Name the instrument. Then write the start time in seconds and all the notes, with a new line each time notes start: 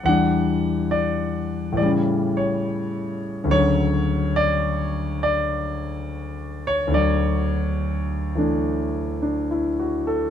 grand piano
0.04 E2 E3 G3 F#5
0.08 D4
0.91 D5
1.72 A2 E3
1.77 G3 D5
1.83 C#3
2.37 C#5
3.44 D2 D3
3.51 C#3 F#3 C#5
4.36 D5
5.23 D5
6.67 C#5
6.87 D2
6.92 D3 F#3 D5
8.35 E3 A3 D4
9.22 D4
9.51 E4
9.80 F#4
10.07 A4